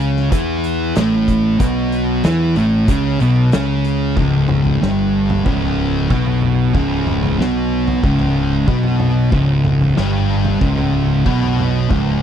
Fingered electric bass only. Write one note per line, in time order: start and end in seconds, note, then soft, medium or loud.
0.00 0.28 C#2 medium
0.32 0.92 E2 medium
0.96 1.56 A1 loud
1.60 2.20 B1 loud
2.25 2.55 E2 medium
2.57 2.87 A1 loud
2.88 3.18 C#2 loud
3.21 3.51 B1 loud
3.54 4.14 C#2 medium
4.16 4.77 C#1 medium
4.82 5.42 G1 medium
5.46 6.07 C#1 medium
6.11 6.71 B1 loud
6.74 7.35 C#1 loud
7.38 7.99 B1 medium
8.03 8.64 C#1 medium
8.67 9.28 B1 medium
9.32 9.93 C#1 loud
9.97 10.58 G1 medium
10.61 11.22 C#1 medium
11.26 11.87 B1 medium
11.90 12.22 C#1 loud